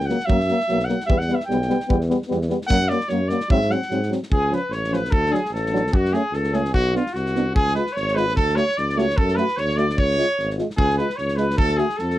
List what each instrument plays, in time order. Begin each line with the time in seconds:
Already playing: tuba C#2
0.00 snare
0.06 euphonium F#3 A#3, trumpet F#5, snare
0.20 snare
0.25 tuba F#2, euphonium F#3, trumpet E5
0.30 euphonium A#3, kick
0.40 snare
0.48 euphonium F#3 A#3, snare
0.60 snare
0.69 tuba B1, euphonium F#3 A#3, snare
0.80 snare
0.85 euphonium A#3, trumpet F#5
0.89 euphonium F#3, snare
1.00 snare
1.06 tuba E2, euphonium G3 B3, trumpet E5, kick
1.18 trumpet F#5, snare
1.28 euphonium G3 B3, snare
1.34 trumpet E5
1.40 snare
1.45 trumpet G5
1.49 tuba B1, euphonium G3 B3, snare
1.62 snare
1.69 euphonium G3 B3, snare
1.80 snare
1.88 tuba E2, euphonium G3 B3, kick
2.01 snare
2.09 euphonium G3 B3, snare
2.22 snare
2.28 tuba E2, euphonium G3 B3, snare
2.42 snare
2.49 euphonium G3 B3, snare
2.62 snare
2.67 tuba F#2, euphonium F#3 A#3, trumpet F#5, kick
2.81 snare
2.89 euphonium F#3 A#3, trumpet D5, snare
3.00 snare
3.09 tuba F#2, euphonium F#3 A#3, trumpet C#5, snare
3.28 euphonium F#3 A#3, trumpet D5, snare
3.41 snare
3.49 tuba G#2, euphonium F#3 C4, trumpet E5, kick
3.62 snare
3.69 euphonium F#3 C4, trumpet F#5, snare
3.82 snare
3.90 tuba G#2, euphonium F#3 C4, snare
4.03 snare
4.10 euphonium F#3 C4, snare
4.23 snare
4.31 tuba C#2, trumpet G#4, kick
4.51 euphonium F3 C#4, trumpet B4, snare
4.55 trumpet B4
4.70 tuba A1, trumpet C#5, snare
4.74 trumpet C#5
4.84 snare
4.90 euphonium F3 C#4, trumpet B4, snare
4.95 trumpet B4
5.05 snare
5.10 tuba D2, trumpet A4, kick
5.26 euphonium D4, snare
5.32 euphonium F#3, trumpet G#4, snare
5.45 snare
5.51 tuba A1, trumpet A4
5.56 snare
5.66 snare
5.72 euphonium F#3 D4, snare
5.87 snare
5.92 tuba F#2, trumpet F#4, kick
5.96 trumpet F#4
6.05 snare
6.13 euphonium A3 C#4, trumpet G#4, snare
6.32 tuba C#2, trumpet A4, snare
6.44 snare
6.53 euphonium A3 C#4, trumpet G#4, snare
6.65 snare
6.73 tuba B1, trumpet F#4, kick
6.93 euphonium B3 D4, trumpet F4, snare
7.07 snare
7.13 tuba C2, trumpet F#4, snare
7.26 snare
7.35 euphonium B3 D4, snare
7.55 tuba C#2, trumpet G#4, kick
7.67 snare
7.74 euphonium G#3 F4, trumpet B4, snare
7.87 snare
7.92 tuba G#1, trumpet C#5
7.97 trumpet C#5, snare
8.08 snare
8.14 euphonium G#3 F4, trumpet B4, snare
8.29 snare
8.36 tuba D2, trumpet A4, kick
8.49 snare
8.56 euphonium A3 F#4, trumpet C#5, snare
8.69 snare
8.77 tuba C#2, trumpet D5, snare
8.89 snare
8.97 euphonium A3 F#4, trumpet C#5, snare
9.10 snare
9.17 tuba F#2, trumpet A4, kick
9.29 snare
9.36 euphonium A3 F#4, trumpet B4, snare
9.48 snare
9.57 tuba D2, trumpet C#5, snare
9.69 snare
9.77 euphonium A3 F#4, trumpet D5, snare
9.90 snare
9.98 tuba C#2, trumpet C#5, kick
10.11 snare
10.18 euphonium G#3 F4, snare
10.39 tuba G#1, snare
10.50 snare
10.57 euphonium G#3 F4, snare
10.70 snare
10.77 tuba C#2, trumpet G#4, kick
10.90 snare
10.97 euphonium G#3 F4, trumpet B4, snare
11.10 snare
11.16 tuba C#2, trumpet C#5, snare
11.28 snare
11.36 euphonium G#3 F4, trumpet B4, snare
11.50 snare
11.57 tuba D2, trumpet A4, kick
11.69 snare
11.77 euphonium A3 F#4, trumpet G#4, snare
11.90 snare
11.97 tuba F2, trumpet A4, snare
12.10 snare